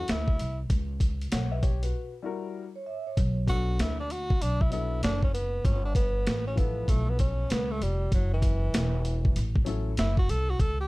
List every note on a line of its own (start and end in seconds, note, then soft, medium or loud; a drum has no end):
0.00 0.11 F#4 loud
0.08 0.38 D2 medium
0.08 0.60 E4 medium
0.08 snare loud
0.08 closed hi-hat medium
0.28 kick medium
0.39 0.69 C2 medium
0.39 closed hi-hat medium
0.70 1.29 C#2 medium
0.70 kick loud
0.70 closed hi-hat medium
1.00 kick medium
1.00 closed hi-hat medium
1.21 closed hi-hat soft
1.32 1.91 B1 medium
1.32 1.51 C#5 medium
1.32 1.51 F#5 medium
1.32 snare loud
1.32 closed hi-hat loud
1.52 1.62 B4 medium
1.52 1.62 E5 medium
1.62 1.82 G4 medium
1.62 1.81 C#5 medium
1.62 kick medium
1.62 closed hi-hat medium
1.82 2.12 F#4 soft
1.82 2.12 B4 medium
1.82 closed hi-hat medium
2.22 2.62 G3 medium
2.22 2.63 E4 medium
2.22 2.64 F#4 medium
2.22 2.64 A#4 medium
2.76 2.86 C#5 medium
2.86 3.05 E5 medium
3.07 3.36 C#5 medium
3.17 3.76 B1 loud
3.17 kick loud
3.17 closed hi-hat medium
3.47 3.94 F#3 medium
3.47 3.95 B3 medium
3.47 3.95 D4 medium
3.47 3.82 F#4 loud
3.47 3.96 A4 medium
3.47 kick medium
3.47 closed hi-hat medium
3.79 4.38 D2 medium
3.79 3.99 E4 loud
3.79 snare loud
3.79 closed hi-hat loud
4.00 4.13 D4 medium
4.10 4.43 F#4 loud
4.10 closed hi-hat medium
4.30 kick medium
4.41 5.00 B1 medium
4.41 4.63 D4 loud
4.41 closed hi-hat medium
4.61 4.72 E4 medium
4.61 kick loud
4.70 5.18 F#3 medium
4.70 5.18 B3 medium
4.70 5.19 D4 medium
4.70 5.01 E4 medium
4.70 5.20 A4 medium
4.70 closed hi-hat medium
5.03 5.62 F#1 medium
5.03 5.22 D4 loud
5.03 snare loud
5.03 closed hi-hat medium
5.23 5.33 C#4 medium
5.23 kick medium
5.34 5.67 B3 medium
5.34 closed hi-hat medium
5.65 6.24 G1 loud
5.65 5.84 C#4 loud
5.65 kick loud
5.65 closed hi-hat medium
5.85 5.95 D4 medium
5.95 6.43 B3 medium
5.95 kick loud
5.95 closed hi-hat medium
6.27 6.86 A1 medium
6.27 snare loud
6.27 closed hi-hat loud
6.47 6.59 C#4 medium
6.55 7.45 F3 medium
6.55 7.45 B3 medium
6.55 6.90 B3 medium
6.55 7.46 E4 medium
6.55 7.47 A4 medium
6.55 kick medium
6.55 closed hi-hat medium
6.88 7.47 B1 loud
6.88 7.10 A3 medium
6.88 kick medium
6.88 closed hi-hat medium
7.09 7.19 B3 medium
7.19 7.52 C#4 medium
7.19 kick medium
7.19 closed hi-hat medium
7.50 7.80 C#2 loud
7.50 7.72 B3 medium
7.50 snare loud
7.50 closed hi-hat medium
7.71 7.84 A3 medium
7.81 8.11 F1 medium
7.81 8.13 G3 medium
7.81 closed hi-hat medium
8.12 8.71 F#1 loud
8.12 8.32 F#3 medium
8.12 kick loud
8.12 closed hi-hat medium
8.33 9.55 E3 medium
8.42 kick medium
8.42 closed hi-hat medium
8.74 9.33 E1 medium
8.74 snare loud
8.74 closed hi-hat loud
9.05 closed hi-hat medium
9.25 kick medium
9.36 9.95 A1 loud
9.36 closed hi-hat medium
9.56 kick loud
9.65 9.90 F#3 medium
9.65 9.91 C#4 medium
9.65 9.91 E4 medium
9.65 9.92 A4 medium
9.65 closed hi-hat medium
9.97 10.27 F#1 medium
9.97 10.17 E4 loud
9.97 snare medium
9.97 closed hi-hat medium
10.17 10.31 F#4 medium
10.17 kick medium
10.29 10.58 C2 loud
10.29 10.51 A4 loud
10.29 closed hi-hat medium
10.50 10.62 F#4 medium
10.60 10.88 C#2 loud
10.60 10.79 A4 loud
10.60 kick loud
10.60 closed hi-hat medium
10.80 10.88 G4 medium